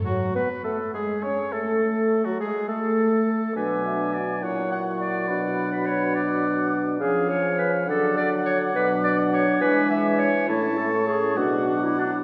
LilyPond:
<<
  \new Staff \with { instrumentName = "Oboe" } { \time 6/8 \key b \dorian \tempo 4. = 69 fis'8 b'8 a'8 gis'8 cis''8 a'8~ | a'8. fis'16 gis'8 a'4. | gis''4. fis''4. | fis''4. fis''4. |
eis''4. fis''4.~ | fis''4. gis''4. | a''4. fis''4. | }
  \new Staff \with { instrumentName = "Flute" } { \time 6/8 \key b \dorian fis'8 b'8 a'8 gis'8 cis''8 a'8~ | a'8. fis'16 gis'8 a'4. | d'''4. cis'''4. | b''4. d'''4. |
gis''4. d'''4.~ | d'''2. | cis'''4. d'''4. | }
  \new Staff \with { instrumentName = "Clarinet" } { \time 6/8 \key b \dorian fis'8 b'8 a'8 gis'8 cis''8 a'8~ | a'8. fis'16 gis'8 a'4. | b'8 e''8 d''8 cis''8 fis''8 d''8~ | d''8. b'16 cis''8 d''4 r8 |
gis'8 cis''8 b'8 a'8 d''8 cis''8 | b'8 d''8 cis''8 b'8 e''8 cis''8 | e'8 a'8 gis'8 fis'8. e'16 d'8 | }
  \new Staff \with { instrumentName = "French horn section" } { \time 6/8 \key b \dorian << { fis8 b8 a8 gis8 cis'8 a8~ | a8. fis16 gis8 a4. | d'4. e'4. | d'2. |
cis'4. d'4. | d'4. d'4. | cis'4. d'4. | } \\ { r2. | r2. | fis2.~ | fis2. |
eis4. fis4. | fis4. gis4. | a4. fis4. | } >> }
  \new Staff \with { instrumentName = "Bassoon" } { \clef bass \time 6/8 \key b \dorian fis8 b8 a8 gis8 cis'8 a8~ | a8. fis16 gis8 a4. | b,4. ais,4. | b,2. |
cis4. d4. | b,4. e4. | a,4. b,4. | }
>>